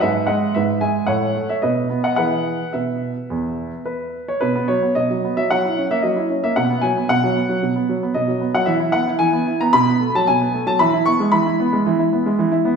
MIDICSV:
0, 0, Header, 1, 2, 480
1, 0, Start_track
1, 0, Key_signature, 4, "major"
1, 0, Tempo, 531915
1, 22, Time_signature, 4, 2, 24, 8
1, 1462, Tempo, 554529
1, 3882, Key_signature, 5, "major"
1, 4822, Tempo, 529568
1, 11402, End_track
2, 0, Start_track
2, 0, Title_t, "Grand piano"
2, 0, Program_c, 0, 0
2, 7, Note_on_c, 0, 76, 70
2, 16, Note_on_c, 0, 44, 56
2, 16, Note_on_c, 0, 71, 54
2, 240, Note_on_c, 0, 78, 62
2, 241, Note_off_c, 0, 71, 0
2, 250, Note_off_c, 0, 44, 0
2, 250, Note_on_c, 0, 75, 53
2, 252, Note_on_c, 0, 56, 47
2, 253, Note_off_c, 0, 76, 0
2, 476, Note_off_c, 0, 75, 0
2, 487, Note_off_c, 0, 56, 0
2, 488, Note_off_c, 0, 78, 0
2, 491, Note_on_c, 0, 76, 62
2, 505, Note_on_c, 0, 44, 46
2, 506, Note_on_c, 0, 71, 45
2, 708, Note_off_c, 0, 76, 0
2, 724, Note_off_c, 0, 71, 0
2, 730, Note_on_c, 0, 80, 62
2, 732, Note_off_c, 0, 44, 0
2, 736, Note_on_c, 0, 56, 40
2, 737, Note_on_c, 0, 76, 44
2, 959, Note_off_c, 0, 76, 0
2, 961, Note_on_c, 0, 78, 69
2, 969, Note_off_c, 0, 56, 0
2, 972, Note_on_c, 0, 45, 55
2, 973, Note_off_c, 0, 80, 0
2, 975, Note_on_c, 0, 73, 51
2, 1209, Note_off_c, 0, 45, 0
2, 1218, Note_on_c, 0, 57, 42
2, 1314, Note_off_c, 0, 73, 0
2, 1333, Note_off_c, 0, 78, 0
2, 1348, Note_on_c, 0, 76, 61
2, 1356, Note_on_c, 0, 73, 49
2, 1455, Note_off_c, 0, 57, 0
2, 1461, Note_on_c, 0, 75, 65
2, 1462, Note_off_c, 0, 73, 0
2, 1466, Note_off_c, 0, 76, 0
2, 1472, Note_on_c, 0, 47, 50
2, 1473, Note_on_c, 0, 71, 46
2, 1696, Note_off_c, 0, 47, 0
2, 1702, Note_on_c, 0, 59, 45
2, 1783, Note_off_c, 0, 75, 0
2, 1798, Note_off_c, 0, 71, 0
2, 1825, Note_on_c, 0, 78, 69
2, 1834, Note_on_c, 0, 75, 44
2, 1920, Note_off_c, 0, 78, 0
2, 1929, Note_off_c, 0, 59, 0
2, 1933, Note_on_c, 0, 78, 74
2, 1939, Note_off_c, 0, 75, 0
2, 1942, Note_on_c, 0, 59, 34
2, 1942, Note_on_c, 0, 68, 37
2, 1944, Note_on_c, 0, 52, 40
2, 1946, Note_on_c, 0, 71, 52
2, 2282, Note_off_c, 0, 52, 0
2, 2329, Note_off_c, 0, 59, 0
2, 2329, Note_off_c, 0, 68, 0
2, 2394, Note_off_c, 0, 71, 0
2, 2420, Note_on_c, 0, 76, 46
2, 2421, Note_off_c, 0, 78, 0
2, 2428, Note_on_c, 0, 71, 35
2, 2429, Note_on_c, 0, 47, 41
2, 2769, Note_off_c, 0, 47, 0
2, 2915, Note_on_c, 0, 40, 49
2, 3255, Note_off_c, 0, 40, 0
2, 3383, Note_off_c, 0, 71, 0
2, 3396, Note_on_c, 0, 71, 51
2, 3640, Note_off_c, 0, 76, 0
2, 3762, Note_off_c, 0, 71, 0
2, 3768, Note_on_c, 0, 73, 62
2, 3873, Note_on_c, 0, 71, 70
2, 3883, Note_on_c, 0, 47, 52
2, 3885, Note_off_c, 0, 73, 0
2, 3997, Note_off_c, 0, 47, 0
2, 4001, Note_on_c, 0, 59, 54
2, 4110, Note_on_c, 0, 73, 68
2, 4114, Note_off_c, 0, 71, 0
2, 4117, Note_on_c, 0, 54, 43
2, 4125, Note_off_c, 0, 59, 0
2, 4237, Note_on_c, 0, 59, 41
2, 4242, Note_off_c, 0, 54, 0
2, 4345, Note_on_c, 0, 75, 70
2, 4351, Note_off_c, 0, 73, 0
2, 4354, Note_on_c, 0, 47, 45
2, 4361, Note_off_c, 0, 59, 0
2, 4469, Note_off_c, 0, 47, 0
2, 4478, Note_on_c, 0, 54, 46
2, 4598, Note_off_c, 0, 54, 0
2, 4600, Note_on_c, 0, 59, 46
2, 4701, Note_off_c, 0, 75, 0
2, 4707, Note_on_c, 0, 76, 74
2, 4709, Note_on_c, 0, 54, 43
2, 4717, Note_off_c, 0, 59, 0
2, 4820, Note_off_c, 0, 54, 0
2, 4822, Note_off_c, 0, 76, 0
2, 4825, Note_on_c, 0, 78, 78
2, 4833, Note_on_c, 0, 54, 57
2, 4944, Note_off_c, 0, 54, 0
2, 4958, Note_on_c, 0, 64, 41
2, 5076, Note_off_c, 0, 64, 0
2, 5076, Note_on_c, 0, 61, 49
2, 5148, Note_off_c, 0, 78, 0
2, 5190, Note_on_c, 0, 76, 74
2, 5191, Note_on_c, 0, 58, 50
2, 5195, Note_off_c, 0, 61, 0
2, 5293, Note_on_c, 0, 75, 59
2, 5303, Note_on_c, 0, 54, 49
2, 5307, Note_off_c, 0, 76, 0
2, 5313, Note_off_c, 0, 58, 0
2, 5420, Note_off_c, 0, 54, 0
2, 5423, Note_on_c, 0, 64, 45
2, 5543, Note_on_c, 0, 61, 42
2, 5549, Note_off_c, 0, 64, 0
2, 5660, Note_off_c, 0, 75, 0
2, 5669, Note_on_c, 0, 76, 70
2, 5670, Note_off_c, 0, 61, 0
2, 5670, Note_on_c, 0, 58, 51
2, 5782, Note_on_c, 0, 78, 72
2, 5787, Note_off_c, 0, 76, 0
2, 5788, Note_off_c, 0, 58, 0
2, 5789, Note_on_c, 0, 47, 60
2, 5904, Note_off_c, 0, 47, 0
2, 5908, Note_on_c, 0, 59, 52
2, 6012, Note_on_c, 0, 80, 71
2, 6023, Note_on_c, 0, 54, 41
2, 6025, Note_off_c, 0, 78, 0
2, 6034, Note_off_c, 0, 59, 0
2, 6152, Note_off_c, 0, 54, 0
2, 6154, Note_on_c, 0, 59, 49
2, 6236, Note_off_c, 0, 80, 0
2, 6264, Note_on_c, 0, 78, 85
2, 6268, Note_on_c, 0, 47, 52
2, 6277, Note_off_c, 0, 59, 0
2, 6384, Note_off_c, 0, 47, 0
2, 6395, Note_on_c, 0, 54, 52
2, 6511, Note_on_c, 0, 59, 43
2, 6517, Note_off_c, 0, 54, 0
2, 6626, Note_on_c, 0, 54, 48
2, 6634, Note_off_c, 0, 59, 0
2, 6747, Note_on_c, 0, 47, 49
2, 6751, Note_off_c, 0, 54, 0
2, 6839, Note_off_c, 0, 78, 0
2, 6862, Note_off_c, 0, 47, 0
2, 6868, Note_on_c, 0, 59, 43
2, 6989, Note_on_c, 0, 54, 46
2, 6992, Note_off_c, 0, 59, 0
2, 7113, Note_off_c, 0, 54, 0
2, 7113, Note_on_c, 0, 59, 48
2, 7217, Note_on_c, 0, 75, 67
2, 7224, Note_on_c, 0, 47, 50
2, 7234, Note_off_c, 0, 59, 0
2, 7339, Note_on_c, 0, 54, 44
2, 7341, Note_off_c, 0, 47, 0
2, 7455, Note_on_c, 0, 59, 44
2, 7467, Note_off_c, 0, 54, 0
2, 7543, Note_off_c, 0, 75, 0
2, 7579, Note_on_c, 0, 54, 48
2, 7581, Note_on_c, 0, 78, 78
2, 7585, Note_off_c, 0, 59, 0
2, 7681, Note_on_c, 0, 76, 69
2, 7689, Note_on_c, 0, 52, 59
2, 7700, Note_off_c, 0, 54, 0
2, 7701, Note_off_c, 0, 78, 0
2, 7810, Note_on_c, 0, 64, 52
2, 7811, Note_off_c, 0, 52, 0
2, 7922, Note_on_c, 0, 78, 79
2, 7930, Note_off_c, 0, 76, 0
2, 7934, Note_on_c, 0, 59, 47
2, 7940, Note_off_c, 0, 64, 0
2, 8059, Note_on_c, 0, 64, 46
2, 8062, Note_off_c, 0, 59, 0
2, 8071, Note_off_c, 0, 78, 0
2, 8163, Note_on_c, 0, 80, 85
2, 8171, Note_on_c, 0, 52, 54
2, 8185, Note_off_c, 0, 64, 0
2, 8292, Note_off_c, 0, 52, 0
2, 8294, Note_on_c, 0, 59, 53
2, 8416, Note_on_c, 0, 64, 47
2, 8424, Note_off_c, 0, 59, 0
2, 8533, Note_off_c, 0, 80, 0
2, 8541, Note_on_c, 0, 82, 81
2, 8545, Note_off_c, 0, 64, 0
2, 8546, Note_on_c, 0, 59, 53
2, 8654, Note_on_c, 0, 83, 92
2, 8662, Note_on_c, 0, 47, 72
2, 8663, Note_off_c, 0, 82, 0
2, 8665, Note_off_c, 0, 59, 0
2, 8780, Note_off_c, 0, 47, 0
2, 8786, Note_on_c, 0, 59, 49
2, 8905, Note_on_c, 0, 57, 50
2, 8913, Note_off_c, 0, 59, 0
2, 9023, Note_off_c, 0, 83, 0
2, 9033, Note_off_c, 0, 57, 0
2, 9038, Note_on_c, 0, 54, 58
2, 9038, Note_on_c, 0, 81, 84
2, 9147, Note_on_c, 0, 80, 80
2, 9153, Note_on_c, 0, 47, 51
2, 9154, Note_off_c, 0, 81, 0
2, 9159, Note_off_c, 0, 54, 0
2, 9268, Note_off_c, 0, 47, 0
2, 9272, Note_on_c, 0, 59, 50
2, 9389, Note_on_c, 0, 57, 48
2, 9397, Note_off_c, 0, 59, 0
2, 9503, Note_on_c, 0, 54, 48
2, 9506, Note_on_c, 0, 81, 83
2, 9508, Note_off_c, 0, 80, 0
2, 9515, Note_off_c, 0, 57, 0
2, 9618, Note_on_c, 0, 83, 82
2, 9625, Note_on_c, 0, 52, 67
2, 9626, Note_off_c, 0, 54, 0
2, 9627, Note_off_c, 0, 81, 0
2, 9743, Note_off_c, 0, 52, 0
2, 9748, Note_on_c, 0, 64, 58
2, 9856, Note_on_c, 0, 85, 89
2, 9862, Note_off_c, 0, 83, 0
2, 9864, Note_on_c, 0, 59, 49
2, 9874, Note_off_c, 0, 64, 0
2, 9986, Note_on_c, 0, 56, 56
2, 9992, Note_off_c, 0, 59, 0
2, 10092, Note_on_c, 0, 83, 79
2, 10100, Note_on_c, 0, 52, 59
2, 10102, Note_off_c, 0, 85, 0
2, 10113, Note_off_c, 0, 56, 0
2, 10221, Note_off_c, 0, 52, 0
2, 10223, Note_on_c, 0, 64, 51
2, 10348, Note_on_c, 0, 59, 55
2, 10352, Note_off_c, 0, 64, 0
2, 10464, Note_on_c, 0, 56, 56
2, 10475, Note_off_c, 0, 59, 0
2, 10587, Note_on_c, 0, 52, 66
2, 10593, Note_off_c, 0, 56, 0
2, 10704, Note_off_c, 0, 52, 0
2, 10704, Note_on_c, 0, 64, 50
2, 10827, Note_on_c, 0, 59, 51
2, 10832, Note_off_c, 0, 64, 0
2, 10948, Note_on_c, 0, 56, 57
2, 10953, Note_off_c, 0, 59, 0
2, 11021, Note_off_c, 0, 83, 0
2, 11064, Note_on_c, 0, 52, 63
2, 11072, Note_off_c, 0, 56, 0
2, 11179, Note_off_c, 0, 52, 0
2, 11179, Note_on_c, 0, 64, 57
2, 11302, Note_on_c, 0, 59, 59
2, 11304, Note_off_c, 0, 64, 0
2, 11402, Note_off_c, 0, 59, 0
2, 11402, End_track
0, 0, End_of_file